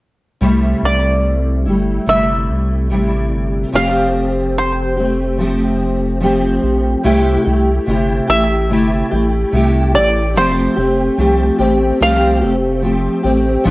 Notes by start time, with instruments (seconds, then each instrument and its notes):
0.41 analog synth bass C2, steel-string acoustic guitar C3 G3 A3 E4
0.83 analog synth bass C2, five-string banjo D5
1.66 analog synth bass G1, steel-string acoustic guitar G3 A3 E4
2.06 analog synth bass G1, steel-string acoustic guitar C3 G3 A3 E4, five-string banjo E5
2.49 analog synth bass C2
2.90 analog synth bass A1, steel-string acoustic guitar C3 G3 A3 E4
3.32 analog synth bass G1
3.72 analog synth bass F1, steel-string acoustic guitar F3 A3 C4 G4, five-string banjo F5
4.58 five-string banjo C5
4.96 steel-string acoustic guitar A3 C4 G4
5.38 steel-string acoustic guitar F3 A3 C4 G4
6.20 steel-string acoustic guitar F3 A3 C4 G4
6.63 analog synth bass A#1
7.03 analog synth bass C2, steel-string acoustic guitar C3 A3 E4 G4
7.44 analog synth bass C2, steel-string acoustic guitar A3 E4 G4
7.86 analog synth bass G1, steel-string acoustic guitar C3 A3 E4 G4
8.27 analog synth bass A1, steel-string acoustic guitar A3 E4 G4, five-string banjo E5
8.70 analog synth bass G1, steel-string acoustic guitar C3 A3 E4 G4
9.11 analog synth bass A1, steel-string acoustic guitar A3 E4 G4
9.52 analog synth bass C2, steel-string acoustic guitar C3 A3 E4 G4
9.94 analog synth bass A1, steel-string acoustic guitar A3 E4 G4, five-string banjo D5
10.35 analog synth bass F1, steel-string acoustic guitar F3 A3 C4 G4, five-string banjo C5
10.76 analog synth bass F1, steel-string acoustic guitar A3 C4 G4
11.17 analog synth bass C2, steel-string acoustic guitar F3 A3 C4 G4
11.59 analog synth bass A1, steel-string acoustic guitar A3 C4 G4
12.00 analog synth bass C2, steel-string acoustic guitar F3 A3 C4 G4, five-string banjo F5
12.41 analog synth bass F1, steel-string acoustic guitar A3 C4 G4
12.82 steel-string acoustic guitar F3 A3 C4 G4
13.23 analog synth bass A1, steel-string acoustic guitar A3 C4 G4
13.64 analog synth bass A#1, steel-string acoustic guitar A#2 F3 A3 D4